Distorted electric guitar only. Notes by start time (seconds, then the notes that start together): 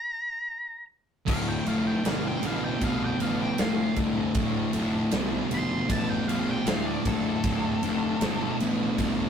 1.26 D2 A2
1.65 D2 A2
2.03 D2 B2
2.41 D2 B2
2.79 D2 B2
3.19 D2 B2
3.58 D2 A2
3.96 D2 A2
4.35 D2 A2
4.74 D2 A2
5.12 D2 B2
5.51 D2 B2
5.88 D2 B2
6.27 D2 B2
6.66 D2 A2
7.05 D2 A2
7.44 D2 A2
7.83 D2 A2
8.22 D2 B2
8.60 D2 B2
8.97 D2 B2